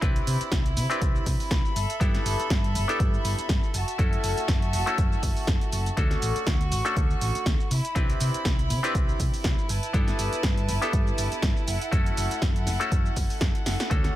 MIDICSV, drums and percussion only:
0, 0, Header, 1, 2, 480
1, 0, Start_track
1, 0, Tempo, 495868
1, 24, Time_signature, 4, 2, 24, 8
1, 13703, End_track
2, 0, Start_track
2, 0, Title_t, "Drums"
2, 23, Note_on_c, 9, 36, 122
2, 23, Note_on_c, 9, 42, 67
2, 24, Note_on_c, 9, 82, 44
2, 119, Note_off_c, 9, 42, 0
2, 120, Note_off_c, 9, 36, 0
2, 121, Note_off_c, 9, 82, 0
2, 155, Note_on_c, 9, 42, 39
2, 156, Note_on_c, 9, 82, 22
2, 252, Note_off_c, 9, 42, 0
2, 253, Note_off_c, 9, 82, 0
2, 264, Note_on_c, 9, 46, 110
2, 265, Note_on_c, 9, 82, 74
2, 361, Note_off_c, 9, 46, 0
2, 362, Note_off_c, 9, 82, 0
2, 396, Note_on_c, 9, 42, 54
2, 398, Note_on_c, 9, 82, 33
2, 493, Note_off_c, 9, 42, 0
2, 494, Note_off_c, 9, 82, 0
2, 499, Note_on_c, 9, 38, 127
2, 503, Note_on_c, 9, 36, 123
2, 503, Note_on_c, 9, 42, 70
2, 505, Note_on_c, 9, 82, 45
2, 596, Note_off_c, 9, 38, 0
2, 600, Note_off_c, 9, 36, 0
2, 600, Note_off_c, 9, 42, 0
2, 601, Note_off_c, 9, 82, 0
2, 637, Note_on_c, 9, 42, 38
2, 638, Note_on_c, 9, 82, 22
2, 734, Note_off_c, 9, 42, 0
2, 735, Note_off_c, 9, 82, 0
2, 744, Note_on_c, 9, 46, 111
2, 746, Note_on_c, 9, 82, 77
2, 841, Note_off_c, 9, 46, 0
2, 843, Note_off_c, 9, 82, 0
2, 877, Note_on_c, 9, 42, 50
2, 879, Note_on_c, 9, 82, 31
2, 974, Note_off_c, 9, 42, 0
2, 976, Note_off_c, 9, 82, 0
2, 984, Note_on_c, 9, 36, 122
2, 984, Note_on_c, 9, 42, 70
2, 986, Note_on_c, 9, 82, 45
2, 1080, Note_off_c, 9, 36, 0
2, 1081, Note_off_c, 9, 42, 0
2, 1082, Note_off_c, 9, 82, 0
2, 1118, Note_on_c, 9, 82, 22
2, 1215, Note_off_c, 9, 82, 0
2, 1223, Note_on_c, 9, 36, 62
2, 1223, Note_on_c, 9, 46, 112
2, 1225, Note_on_c, 9, 82, 79
2, 1320, Note_off_c, 9, 36, 0
2, 1320, Note_off_c, 9, 46, 0
2, 1322, Note_off_c, 9, 82, 0
2, 1357, Note_on_c, 9, 46, 65
2, 1359, Note_on_c, 9, 82, 33
2, 1454, Note_off_c, 9, 46, 0
2, 1455, Note_off_c, 9, 82, 0
2, 1461, Note_on_c, 9, 38, 122
2, 1463, Note_on_c, 9, 36, 127
2, 1464, Note_on_c, 9, 42, 66
2, 1466, Note_on_c, 9, 82, 44
2, 1558, Note_off_c, 9, 38, 0
2, 1560, Note_off_c, 9, 36, 0
2, 1561, Note_off_c, 9, 42, 0
2, 1563, Note_off_c, 9, 82, 0
2, 1599, Note_on_c, 9, 82, 23
2, 1696, Note_off_c, 9, 82, 0
2, 1705, Note_on_c, 9, 46, 111
2, 1707, Note_on_c, 9, 82, 76
2, 1802, Note_off_c, 9, 46, 0
2, 1804, Note_off_c, 9, 82, 0
2, 1838, Note_on_c, 9, 42, 54
2, 1840, Note_on_c, 9, 82, 32
2, 1935, Note_off_c, 9, 42, 0
2, 1936, Note_off_c, 9, 82, 0
2, 1944, Note_on_c, 9, 36, 125
2, 1946, Note_on_c, 9, 42, 66
2, 1947, Note_on_c, 9, 82, 44
2, 2041, Note_off_c, 9, 36, 0
2, 2042, Note_off_c, 9, 42, 0
2, 2044, Note_off_c, 9, 82, 0
2, 2074, Note_on_c, 9, 38, 39
2, 2078, Note_on_c, 9, 42, 38
2, 2080, Note_on_c, 9, 82, 22
2, 2171, Note_off_c, 9, 38, 0
2, 2175, Note_off_c, 9, 42, 0
2, 2177, Note_off_c, 9, 82, 0
2, 2187, Note_on_c, 9, 46, 111
2, 2188, Note_on_c, 9, 82, 75
2, 2284, Note_off_c, 9, 46, 0
2, 2285, Note_off_c, 9, 82, 0
2, 2320, Note_on_c, 9, 42, 52
2, 2321, Note_on_c, 9, 82, 33
2, 2416, Note_off_c, 9, 42, 0
2, 2418, Note_off_c, 9, 82, 0
2, 2423, Note_on_c, 9, 38, 124
2, 2424, Note_on_c, 9, 36, 124
2, 2427, Note_on_c, 9, 42, 67
2, 2429, Note_on_c, 9, 82, 44
2, 2520, Note_off_c, 9, 38, 0
2, 2521, Note_off_c, 9, 36, 0
2, 2524, Note_off_c, 9, 42, 0
2, 2525, Note_off_c, 9, 82, 0
2, 2559, Note_on_c, 9, 42, 36
2, 2560, Note_on_c, 9, 82, 22
2, 2655, Note_off_c, 9, 42, 0
2, 2657, Note_off_c, 9, 82, 0
2, 2666, Note_on_c, 9, 46, 110
2, 2667, Note_on_c, 9, 82, 75
2, 2763, Note_off_c, 9, 46, 0
2, 2764, Note_off_c, 9, 82, 0
2, 2799, Note_on_c, 9, 42, 49
2, 2800, Note_on_c, 9, 82, 30
2, 2896, Note_off_c, 9, 42, 0
2, 2897, Note_off_c, 9, 82, 0
2, 2904, Note_on_c, 9, 36, 126
2, 2905, Note_on_c, 9, 42, 67
2, 2907, Note_on_c, 9, 82, 44
2, 3000, Note_off_c, 9, 36, 0
2, 3002, Note_off_c, 9, 42, 0
2, 3003, Note_off_c, 9, 82, 0
2, 3040, Note_on_c, 9, 82, 22
2, 3137, Note_off_c, 9, 82, 0
2, 3144, Note_on_c, 9, 46, 115
2, 3146, Note_on_c, 9, 82, 77
2, 3241, Note_off_c, 9, 46, 0
2, 3243, Note_off_c, 9, 82, 0
2, 3276, Note_on_c, 9, 42, 52
2, 3278, Note_on_c, 9, 82, 32
2, 3373, Note_off_c, 9, 42, 0
2, 3375, Note_off_c, 9, 82, 0
2, 3379, Note_on_c, 9, 38, 125
2, 3383, Note_on_c, 9, 42, 65
2, 3384, Note_on_c, 9, 36, 126
2, 3385, Note_on_c, 9, 82, 44
2, 3476, Note_off_c, 9, 38, 0
2, 3480, Note_off_c, 9, 36, 0
2, 3480, Note_off_c, 9, 42, 0
2, 3481, Note_off_c, 9, 82, 0
2, 3517, Note_on_c, 9, 82, 22
2, 3614, Note_off_c, 9, 82, 0
2, 3622, Note_on_c, 9, 46, 111
2, 3624, Note_on_c, 9, 82, 76
2, 3719, Note_off_c, 9, 46, 0
2, 3721, Note_off_c, 9, 82, 0
2, 3756, Note_on_c, 9, 42, 51
2, 3757, Note_on_c, 9, 82, 31
2, 3853, Note_off_c, 9, 42, 0
2, 3854, Note_off_c, 9, 82, 0
2, 3863, Note_on_c, 9, 36, 121
2, 3863, Note_on_c, 9, 42, 65
2, 3865, Note_on_c, 9, 82, 44
2, 3960, Note_off_c, 9, 36, 0
2, 3960, Note_off_c, 9, 42, 0
2, 3962, Note_off_c, 9, 82, 0
2, 3996, Note_on_c, 9, 42, 36
2, 3997, Note_on_c, 9, 82, 22
2, 4092, Note_off_c, 9, 42, 0
2, 4094, Note_off_c, 9, 82, 0
2, 4102, Note_on_c, 9, 46, 109
2, 4103, Note_on_c, 9, 82, 77
2, 4198, Note_off_c, 9, 46, 0
2, 4200, Note_off_c, 9, 82, 0
2, 4235, Note_on_c, 9, 42, 52
2, 4237, Note_on_c, 9, 82, 33
2, 4332, Note_off_c, 9, 42, 0
2, 4333, Note_off_c, 9, 82, 0
2, 4339, Note_on_c, 9, 38, 119
2, 4343, Note_on_c, 9, 36, 125
2, 4343, Note_on_c, 9, 42, 65
2, 4344, Note_on_c, 9, 82, 45
2, 4436, Note_off_c, 9, 38, 0
2, 4439, Note_off_c, 9, 36, 0
2, 4439, Note_off_c, 9, 42, 0
2, 4441, Note_off_c, 9, 82, 0
2, 4476, Note_on_c, 9, 42, 34
2, 4477, Note_on_c, 9, 82, 22
2, 4572, Note_off_c, 9, 42, 0
2, 4574, Note_off_c, 9, 82, 0
2, 4582, Note_on_c, 9, 46, 111
2, 4584, Note_on_c, 9, 82, 76
2, 4679, Note_off_c, 9, 46, 0
2, 4680, Note_off_c, 9, 82, 0
2, 4715, Note_on_c, 9, 42, 48
2, 4717, Note_on_c, 9, 82, 32
2, 4812, Note_off_c, 9, 42, 0
2, 4814, Note_off_c, 9, 82, 0
2, 4822, Note_on_c, 9, 36, 125
2, 4822, Note_on_c, 9, 42, 63
2, 4824, Note_on_c, 9, 82, 45
2, 4919, Note_off_c, 9, 36, 0
2, 4919, Note_off_c, 9, 42, 0
2, 4921, Note_off_c, 9, 82, 0
2, 4958, Note_on_c, 9, 82, 22
2, 5054, Note_off_c, 9, 82, 0
2, 5062, Note_on_c, 9, 46, 113
2, 5063, Note_on_c, 9, 36, 65
2, 5064, Note_on_c, 9, 82, 79
2, 5159, Note_off_c, 9, 36, 0
2, 5159, Note_off_c, 9, 46, 0
2, 5160, Note_off_c, 9, 82, 0
2, 5195, Note_on_c, 9, 46, 64
2, 5197, Note_on_c, 9, 82, 33
2, 5292, Note_off_c, 9, 46, 0
2, 5294, Note_off_c, 9, 82, 0
2, 5298, Note_on_c, 9, 38, 123
2, 5302, Note_on_c, 9, 42, 65
2, 5303, Note_on_c, 9, 36, 123
2, 5303, Note_on_c, 9, 82, 43
2, 5395, Note_off_c, 9, 38, 0
2, 5399, Note_off_c, 9, 42, 0
2, 5400, Note_off_c, 9, 36, 0
2, 5400, Note_off_c, 9, 82, 0
2, 5435, Note_on_c, 9, 42, 35
2, 5436, Note_on_c, 9, 82, 22
2, 5532, Note_off_c, 9, 42, 0
2, 5533, Note_off_c, 9, 82, 0
2, 5542, Note_on_c, 9, 46, 111
2, 5544, Note_on_c, 9, 82, 78
2, 5639, Note_off_c, 9, 46, 0
2, 5640, Note_off_c, 9, 82, 0
2, 5676, Note_on_c, 9, 42, 49
2, 5677, Note_on_c, 9, 82, 32
2, 5772, Note_off_c, 9, 42, 0
2, 5774, Note_off_c, 9, 82, 0
2, 5782, Note_on_c, 9, 42, 64
2, 5783, Note_on_c, 9, 36, 116
2, 5784, Note_on_c, 9, 82, 45
2, 5879, Note_off_c, 9, 36, 0
2, 5879, Note_off_c, 9, 42, 0
2, 5881, Note_off_c, 9, 82, 0
2, 5912, Note_on_c, 9, 38, 38
2, 5916, Note_on_c, 9, 42, 36
2, 5918, Note_on_c, 9, 82, 23
2, 6009, Note_off_c, 9, 38, 0
2, 6013, Note_off_c, 9, 42, 0
2, 6014, Note_off_c, 9, 82, 0
2, 6023, Note_on_c, 9, 46, 104
2, 6025, Note_on_c, 9, 82, 82
2, 6120, Note_off_c, 9, 46, 0
2, 6121, Note_off_c, 9, 82, 0
2, 6155, Note_on_c, 9, 42, 51
2, 6157, Note_on_c, 9, 82, 34
2, 6252, Note_off_c, 9, 42, 0
2, 6254, Note_off_c, 9, 82, 0
2, 6259, Note_on_c, 9, 38, 118
2, 6263, Note_on_c, 9, 36, 115
2, 6263, Note_on_c, 9, 42, 65
2, 6265, Note_on_c, 9, 82, 47
2, 6356, Note_off_c, 9, 38, 0
2, 6359, Note_off_c, 9, 36, 0
2, 6360, Note_off_c, 9, 42, 0
2, 6361, Note_off_c, 9, 82, 0
2, 6396, Note_on_c, 9, 42, 36
2, 6398, Note_on_c, 9, 82, 22
2, 6493, Note_off_c, 9, 42, 0
2, 6495, Note_off_c, 9, 82, 0
2, 6503, Note_on_c, 9, 46, 102
2, 6505, Note_on_c, 9, 82, 79
2, 6600, Note_off_c, 9, 46, 0
2, 6601, Note_off_c, 9, 82, 0
2, 6637, Note_on_c, 9, 42, 48
2, 6638, Note_on_c, 9, 82, 33
2, 6733, Note_off_c, 9, 42, 0
2, 6735, Note_off_c, 9, 82, 0
2, 6743, Note_on_c, 9, 36, 122
2, 6744, Note_on_c, 9, 42, 65
2, 6746, Note_on_c, 9, 82, 47
2, 6840, Note_off_c, 9, 36, 0
2, 6841, Note_off_c, 9, 42, 0
2, 6843, Note_off_c, 9, 82, 0
2, 6878, Note_on_c, 9, 82, 23
2, 6974, Note_off_c, 9, 82, 0
2, 6984, Note_on_c, 9, 46, 108
2, 6985, Note_on_c, 9, 82, 84
2, 7081, Note_off_c, 9, 46, 0
2, 7082, Note_off_c, 9, 82, 0
2, 7117, Note_on_c, 9, 42, 52
2, 7119, Note_on_c, 9, 82, 34
2, 7214, Note_off_c, 9, 42, 0
2, 7216, Note_off_c, 9, 82, 0
2, 7221, Note_on_c, 9, 38, 115
2, 7223, Note_on_c, 9, 36, 120
2, 7225, Note_on_c, 9, 42, 65
2, 7227, Note_on_c, 9, 82, 44
2, 7318, Note_off_c, 9, 38, 0
2, 7320, Note_off_c, 9, 36, 0
2, 7322, Note_off_c, 9, 42, 0
2, 7323, Note_off_c, 9, 82, 0
2, 7360, Note_on_c, 9, 82, 22
2, 7457, Note_off_c, 9, 82, 0
2, 7464, Note_on_c, 9, 46, 110
2, 7466, Note_on_c, 9, 82, 79
2, 7561, Note_off_c, 9, 46, 0
2, 7562, Note_off_c, 9, 82, 0
2, 7597, Note_on_c, 9, 42, 51
2, 7599, Note_on_c, 9, 82, 33
2, 7694, Note_off_c, 9, 42, 0
2, 7695, Note_off_c, 9, 82, 0
2, 7703, Note_on_c, 9, 36, 112
2, 7703, Note_on_c, 9, 42, 67
2, 7705, Note_on_c, 9, 82, 46
2, 7800, Note_off_c, 9, 36, 0
2, 7800, Note_off_c, 9, 42, 0
2, 7801, Note_off_c, 9, 82, 0
2, 7837, Note_on_c, 9, 42, 39
2, 7839, Note_on_c, 9, 82, 24
2, 7934, Note_off_c, 9, 42, 0
2, 7936, Note_off_c, 9, 82, 0
2, 7943, Note_on_c, 9, 46, 103
2, 7944, Note_on_c, 9, 82, 85
2, 8039, Note_off_c, 9, 46, 0
2, 8041, Note_off_c, 9, 82, 0
2, 8077, Note_on_c, 9, 42, 54
2, 8078, Note_on_c, 9, 82, 35
2, 8174, Note_off_c, 9, 42, 0
2, 8175, Note_off_c, 9, 82, 0
2, 8180, Note_on_c, 9, 38, 115
2, 8183, Note_on_c, 9, 36, 112
2, 8184, Note_on_c, 9, 42, 68
2, 8186, Note_on_c, 9, 82, 49
2, 8277, Note_off_c, 9, 38, 0
2, 8280, Note_off_c, 9, 36, 0
2, 8281, Note_off_c, 9, 42, 0
2, 8282, Note_off_c, 9, 82, 0
2, 8316, Note_on_c, 9, 42, 36
2, 8318, Note_on_c, 9, 82, 23
2, 8413, Note_off_c, 9, 42, 0
2, 8415, Note_off_c, 9, 82, 0
2, 8424, Note_on_c, 9, 46, 104
2, 8426, Note_on_c, 9, 82, 81
2, 8521, Note_off_c, 9, 46, 0
2, 8523, Note_off_c, 9, 82, 0
2, 8557, Note_on_c, 9, 42, 52
2, 8559, Note_on_c, 9, 82, 34
2, 8654, Note_off_c, 9, 42, 0
2, 8656, Note_off_c, 9, 82, 0
2, 8663, Note_on_c, 9, 36, 117
2, 8665, Note_on_c, 9, 42, 68
2, 8666, Note_on_c, 9, 82, 48
2, 8760, Note_off_c, 9, 36, 0
2, 8762, Note_off_c, 9, 42, 0
2, 8763, Note_off_c, 9, 82, 0
2, 8798, Note_on_c, 9, 82, 23
2, 8894, Note_off_c, 9, 82, 0
2, 8903, Note_on_c, 9, 36, 61
2, 8904, Note_on_c, 9, 46, 105
2, 8905, Note_on_c, 9, 82, 84
2, 8999, Note_off_c, 9, 36, 0
2, 9000, Note_off_c, 9, 46, 0
2, 9002, Note_off_c, 9, 82, 0
2, 9037, Note_on_c, 9, 46, 60
2, 9039, Note_on_c, 9, 82, 35
2, 9134, Note_off_c, 9, 46, 0
2, 9136, Note_off_c, 9, 82, 0
2, 9140, Note_on_c, 9, 38, 115
2, 9143, Note_on_c, 9, 36, 114
2, 9144, Note_on_c, 9, 42, 68
2, 9145, Note_on_c, 9, 82, 48
2, 9237, Note_off_c, 9, 38, 0
2, 9240, Note_off_c, 9, 36, 0
2, 9240, Note_off_c, 9, 42, 0
2, 9242, Note_off_c, 9, 82, 0
2, 9278, Note_on_c, 9, 82, 24
2, 9375, Note_off_c, 9, 82, 0
2, 9383, Note_on_c, 9, 46, 102
2, 9385, Note_on_c, 9, 82, 82
2, 9480, Note_off_c, 9, 46, 0
2, 9482, Note_off_c, 9, 82, 0
2, 9516, Note_on_c, 9, 42, 50
2, 9518, Note_on_c, 9, 82, 36
2, 9613, Note_off_c, 9, 42, 0
2, 9615, Note_off_c, 9, 82, 0
2, 9623, Note_on_c, 9, 36, 111
2, 9624, Note_on_c, 9, 42, 69
2, 9625, Note_on_c, 9, 82, 47
2, 9720, Note_off_c, 9, 36, 0
2, 9720, Note_off_c, 9, 42, 0
2, 9722, Note_off_c, 9, 82, 0
2, 9752, Note_on_c, 9, 38, 37
2, 9756, Note_on_c, 9, 42, 39
2, 9758, Note_on_c, 9, 82, 25
2, 9849, Note_off_c, 9, 38, 0
2, 9853, Note_off_c, 9, 42, 0
2, 9854, Note_off_c, 9, 82, 0
2, 9863, Note_on_c, 9, 46, 99
2, 9865, Note_on_c, 9, 82, 81
2, 9960, Note_off_c, 9, 46, 0
2, 9962, Note_off_c, 9, 82, 0
2, 9996, Note_on_c, 9, 42, 53
2, 9997, Note_on_c, 9, 82, 36
2, 10093, Note_off_c, 9, 42, 0
2, 10094, Note_off_c, 9, 82, 0
2, 10099, Note_on_c, 9, 38, 124
2, 10103, Note_on_c, 9, 36, 112
2, 10103, Note_on_c, 9, 42, 69
2, 10104, Note_on_c, 9, 82, 49
2, 10196, Note_off_c, 9, 38, 0
2, 10199, Note_off_c, 9, 42, 0
2, 10200, Note_off_c, 9, 36, 0
2, 10201, Note_off_c, 9, 82, 0
2, 10237, Note_on_c, 9, 42, 37
2, 10238, Note_on_c, 9, 82, 24
2, 10334, Note_off_c, 9, 42, 0
2, 10335, Note_off_c, 9, 82, 0
2, 10344, Note_on_c, 9, 46, 100
2, 10346, Note_on_c, 9, 82, 81
2, 10441, Note_off_c, 9, 46, 0
2, 10442, Note_off_c, 9, 82, 0
2, 10476, Note_on_c, 9, 42, 52
2, 10478, Note_on_c, 9, 82, 34
2, 10573, Note_off_c, 9, 42, 0
2, 10574, Note_off_c, 9, 82, 0
2, 10583, Note_on_c, 9, 36, 117
2, 10584, Note_on_c, 9, 42, 69
2, 10585, Note_on_c, 9, 82, 49
2, 10680, Note_off_c, 9, 36, 0
2, 10681, Note_off_c, 9, 42, 0
2, 10682, Note_off_c, 9, 82, 0
2, 10718, Note_on_c, 9, 82, 23
2, 10815, Note_off_c, 9, 82, 0
2, 10823, Note_on_c, 9, 46, 103
2, 10824, Note_on_c, 9, 82, 87
2, 10920, Note_off_c, 9, 46, 0
2, 10921, Note_off_c, 9, 82, 0
2, 10956, Note_on_c, 9, 42, 54
2, 10958, Note_on_c, 9, 82, 36
2, 11053, Note_off_c, 9, 42, 0
2, 11054, Note_off_c, 9, 82, 0
2, 11059, Note_on_c, 9, 38, 119
2, 11062, Note_on_c, 9, 42, 68
2, 11064, Note_on_c, 9, 36, 117
2, 11064, Note_on_c, 9, 82, 47
2, 11156, Note_off_c, 9, 38, 0
2, 11159, Note_off_c, 9, 42, 0
2, 11160, Note_off_c, 9, 36, 0
2, 11161, Note_off_c, 9, 82, 0
2, 11197, Note_on_c, 9, 82, 24
2, 11294, Note_off_c, 9, 82, 0
2, 11303, Note_on_c, 9, 46, 101
2, 11304, Note_on_c, 9, 82, 84
2, 11400, Note_off_c, 9, 46, 0
2, 11401, Note_off_c, 9, 82, 0
2, 11437, Note_on_c, 9, 42, 53
2, 11439, Note_on_c, 9, 82, 35
2, 11534, Note_off_c, 9, 42, 0
2, 11535, Note_off_c, 9, 82, 0
2, 11544, Note_on_c, 9, 36, 115
2, 11545, Note_on_c, 9, 42, 72
2, 11546, Note_on_c, 9, 82, 46
2, 11641, Note_off_c, 9, 36, 0
2, 11641, Note_off_c, 9, 42, 0
2, 11643, Note_off_c, 9, 82, 0
2, 11678, Note_on_c, 9, 42, 40
2, 11680, Note_on_c, 9, 82, 24
2, 11775, Note_off_c, 9, 42, 0
2, 11776, Note_off_c, 9, 82, 0
2, 11785, Note_on_c, 9, 46, 101
2, 11786, Note_on_c, 9, 82, 84
2, 11882, Note_off_c, 9, 46, 0
2, 11883, Note_off_c, 9, 82, 0
2, 11917, Note_on_c, 9, 42, 56
2, 11919, Note_on_c, 9, 82, 36
2, 12014, Note_off_c, 9, 42, 0
2, 12016, Note_off_c, 9, 82, 0
2, 12021, Note_on_c, 9, 38, 123
2, 12024, Note_on_c, 9, 36, 115
2, 12024, Note_on_c, 9, 42, 72
2, 12026, Note_on_c, 9, 82, 50
2, 12118, Note_off_c, 9, 38, 0
2, 12121, Note_off_c, 9, 36, 0
2, 12121, Note_off_c, 9, 42, 0
2, 12123, Note_off_c, 9, 82, 0
2, 12157, Note_on_c, 9, 42, 39
2, 12159, Note_on_c, 9, 82, 23
2, 12254, Note_off_c, 9, 42, 0
2, 12256, Note_off_c, 9, 82, 0
2, 12261, Note_on_c, 9, 38, 37
2, 12265, Note_on_c, 9, 46, 102
2, 12266, Note_on_c, 9, 82, 80
2, 12358, Note_off_c, 9, 38, 0
2, 12361, Note_off_c, 9, 46, 0
2, 12363, Note_off_c, 9, 82, 0
2, 12398, Note_on_c, 9, 42, 54
2, 12400, Note_on_c, 9, 82, 33
2, 12495, Note_off_c, 9, 42, 0
2, 12496, Note_off_c, 9, 82, 0
2, 12504, Note_on_c, 9, 36, 116
2, 12505, Note_on_c, 9, 42, 70
2, 12507, Note_on_c, 9, 82, 46
2, 12601, Note_off_c, 9, 36, 0
2, 12602, Note_off_c, 9, 42, 0
2, 12604, Note_off_c, 9, 82, 0
2, 12639, Note_on_c, 9, 82, 23
2, 12736, Note_off_c, 9, 82, 0
2, 12744, Note_on_c, 9, 36, 59
2, 12744, Note_on_c, 9, 46, 106
2, 12746, Note_on_c, 9, 82, 83
2, 12841, Note_off_c, 9, 36, 0
2, 12841, Note_off_c, 9, 46, 0
2, 12843, Note_off_c, 9, 82, 0
2, 12877, Note_on_c, 9, 46, 60
2, 12879, Note_on_c, 9, 82, 36
2, 12974, Note_off_c, 9, 46, 0
2, 12976, Note_off_c, 9, 82, 0
2, 12980, Note_on_c, 9, 38, 123
2, 12984, Note_on_c, 9, 42, 73
2, 12985, Note_on_c, 9, 36, 115
2, 12985, Note_on_c, 9, 82, 47
2, 13077, Note_off_c, 9, 38, 0
2, 13080, Note_off_c, 9, 42, 0
2, 13081, Note_off_c, 9, 36, 0
2, 13082, Note_off_c, 9, 82, 0
2, 13117, Note_on_c, 9, 42, 40
2, 13119, Note_on_c, 9, 82, 23
2, 13214, Note_off_c, 9, 42, 0
2, 13215, Note_off_c, 9, 82, 0
2, 13225, Note_on_c, 9, 38, 88
2, 13225, Note_on_c, 9, 46, 103
2, 13226, Note_on_c, 9, 82, 82
2, 13321, Note_off_c, 9, 38, 0
2, 13321, Note_off_c, 9, 46, 0
2, 13323, Note_off_c, 9, 82, 0
2, 13359, Note_on_c, 9, 38, 95
2, 13359, Note_on_c, 9, 42, 56
2, 13360, Note_on_c, 9, 82, 34
2, 13456, Note_off_c, 9, 38, 0
2, 13456, Note_off_c, 9, 42, 0
2, 13457, Note_off_c, 9, 82, 0
2, 13464, Note_on_c, 9, 36, 118
2, 13464, Note_on_c, 9, 42, 69
2, 13466, Note_on_c, 9, 82, 46
2, 13561, Note_off_c, 9, 36, 0
2, 13561, Note_off_c, 9, 42, 0
2, 13563, Note_off_c, 9, 82, 0
2, 13593, Note_on_c, 9, 38, 40
2, 13597, Note_on_c, 9, 42, 39
2, 13598, Note_on_c, 9, 82, 24
2, 13690, Note_off_c, 9, 38, 0
2, 13693, Note_off_c, 9, 42, 0
2, 13695, Note_off_c, 9, 82, 0
2, 13703, End_track
0, 0, End_of_file